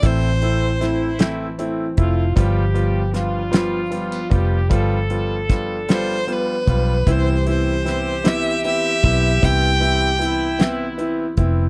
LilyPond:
<<
  \new Staff \with { instrumentName = "Violin" } { \time 6/8 \key g \mixolydian \tempo 4. = 51 c''4. r4. | r2. | r4. c''8 b'4 | c''8 c''4 e''8 e''4 |
g''4. r4. | }
  \new Staff \with { instrumentName = "French horn section" } { \time 6/8 \key g \mixolydian c'4 e'4 r8 f'8 | g'4 f'4. g'8 | a'2~ a'8 r8 | g'2.~ |
g'4 e'4. r8 | }
  \new Staff \with { instrumentName = "Grand piano" } { \time 6/8 \key g \mixolydian <a c' e'>8 <a c' e'>8 <a c' e'>8 <a c' e'>8 <a c' e'>8 <a c' e'>8 | <g b f'>8 <g b f'>8 <g b f'>8 <g b f'>8 <g b f'>8 <g b f'>8 | <g b f'>8 <g b f'>8 <g b f'>8 <g b f'>8 <g b f'>8 <g b f'>8 | <b c' e'>8 <b c' e'>8 <b c' e'>8 <b c' e'>8 <b c' e'>8 <b c' e'>8 |
<b c' e'>8 <b c' e'>8 <b c' e'>8 <b c' e'>8 <b c' e'>8 <b c' e'>8 | }
  \new Staff \with { instrumentName = "Steel-string acoustic guitar" } { \time 6/8 \key g \mixolydian <e c' e'>8 c'4 e8 c'4 | f8 b8 d'8 f8 a16 b16 f8 | f4 d'8 f8 b8 f8 | e8 e'8 g'8 b8 e'8 b8 |
e8 e'8 g'8 b8 e'8 b8 | }
  \new Staff \with { instrumentName = "Fingered electric bass" } { \clef bass \time 6/8 \key g \mixolydian a,,2~ a,,8 f,,8 | g,,2~ g,,8 f,,8 | g,,2~ g,,8 b,,8 | c,2~ c,8 b,,8 |
c,2~ c,8 f,,8 | }
  \new DrumStaff \with { instrumentName = "Drums" } \drummode { \time 6/8 <hh bd>8 hh8 <hh sn>8 <hh sn>8 hh8 <hh bd>8 | <hh bd>8 hh8 <hh sn>8 <hh sn>8 hh8 <hh bd>8 | <hh bd>8 hh8 <hh bd sn>8 <hh sn>8 hh8 <hh bd>8 | <hh bd>8 hh8 <hh sn>8 <hh sn>8 hh8 <hh bd>8 |
<hh bd>8 hh8 hh8 <hh sn>8 hh8 <hh bd>8 | }
>>